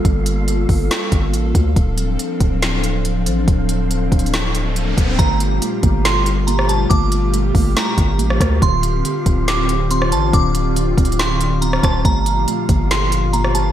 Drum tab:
HH |x-----x-----x-----o-----x-----x-----x-----x-----|x-----x-----x-----x-----x-----x-----x-----x-----|x-----x-----x-----x-x-x-x-----x-----x-----x-----|x-----x-----x-----x-----x-----x-----x-----x-----|
SD |------------------------o-----------------------|------------------------o-----------------------|------------------------o-----------------------|------------------------o--------------r--------|
BD |o-----------------o-----------o-----------o-----|o-----------------o-----------------------------|o-----------------o-----------------------o-----|o-----------------o-----------------------------|

HH |x-----x-----x-----o-----x-----x-----x-----x-----|x-----x-----x-----x-----x-----x-----x-----x-----|x-----x-----x-----x-x-x-x-----x-----x-----x-----|x-----x-----x-----x-----x-----x-----x-----x-----|
SD |------------------------o--------------r--r-----|------------------------o--------------r--------|------------------------o--------------r--r-----|------------------------o--------------r--------|
BD |o-----------------o-----------o-----------o-----|o-----------------o-----------------------------|o-----------------o-----------------------o-----|o-----------------o-----------------------------|